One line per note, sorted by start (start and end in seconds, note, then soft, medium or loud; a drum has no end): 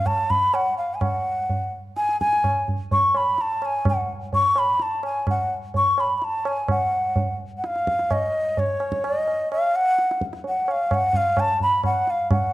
0.06 0.32 A5 medium
0.06 tabla na medium
0.06 tabla ge medium
0.30 0.56 B5 medium
0.30 tabla ge soft
0.54 0.77 F#5 medium
0.54 tabla na medium
0.78 0.96 F5 medium
0.94 1.03 G#5 medium
1.01 1.73 F#5 medium
1.01 tabla na medium
1.01 tabla ge medium
1.49 tabla tin medium
1.49 tabla ge medium
1.97 2.19 G#5 loud
1.97 tabla te medium
2.09 tabla te medium
2.20 2.65 G#5 loud
2.20 tabla ke medium
2.33 tabla te medium
2.44 tabla na medium
2.44 tabla ge medium
2.68 tabla ge medium
2.91 3.18 C#6 loud
2.91 tabla tin medium
2.91 tabla ge medium
3.15 3.43 B5 medium
3.15 tabla na medium
3.38 3.67 A5 medium
3.38 tabla te medium
3.62 3.88 G#5 medium
3.62 tabla na medium
3.85 4.10 F#5 medium
3.85 tabla na medium
3.85 tabla ge medium
4.33 4.60 C#6 loud
4.33 tabla tin medium
4.33 tabla ge medium
4.56 4.84 B5 medium
4.56 tabla na medium
4.80 5.04 A5 medium
4.80 tabla te medium
5.03 5.27 G#5 medium
5.03 tabla na medium
5.27 5.51 F#5 medium
5.27 tabla na medium
5.27 tabla ge medium
5.74 6.02 C#6 loud
5.74 tabla tin medium
5.74 tabla ge medium
5.98 6.18 B5 medium
5.98 tabla na medium
6.18 6.26 B5 medium
6.22 6.49 A5 medium
6.22 tabla te medium
6.45 6.70 G#5 medium
6.45 tabla na medium
6.68 7.36 F#5 medium
6.68 tabla na medium
6.68 tabla ge medium
7.16 tabla tin medium
7.16 tabla ge medium
7.58 7.68 F#5 medium
7.64 8.13 F5 medium
7.64 tabla te medium
7.76 tabla te medium
7.87 tabla ke medium
7.99 tabla te medium
8.11 8.61 D#5 medium
8.11 tabla na medium
8.11 tabla ge medium
8.57 9.06 C#5 medium
8.57 tabla tin medium
8.57 tabla ge medium
8.80 tabla na medium
8.92 tabla ke medium
9.04 9.51 D#5 medium
9.04 tabla na medium
9.27 tabla na medium
9.52 9.77 F5 loud
9.52 tabla na medium
9.76 10.22 F#5 loud
9.98 tabla te medium
10.11 tabla te medium
10.21 tabla ke medium
10.33 tabla te medium
10.44 tabla tin medium
10.48 10.73 F#5 medium
10.68 10.95 F5 medium
10.68 tabla na medium
10.91 11.18 F#5 loud
10.91 tabla na medium
10.91 tabla ge medium
11.13 11.41 F5 loud
11.13 tabla ge medium
11.37 11.62 A5 loud
11.37 tabla na medium
11.37 tabla ge medium
11.60 11.84 B5 loud
11.60 tabla ge medium
11.84 12.12 F#5 loud
11.84 tabla na medium
11.84 tabla ge medium
12.07 12.31 F5 medium
12.07 tabla te medium
12.31 12.53 F#5 medium
12.31 tabla na loud
12.31 tabla ge loud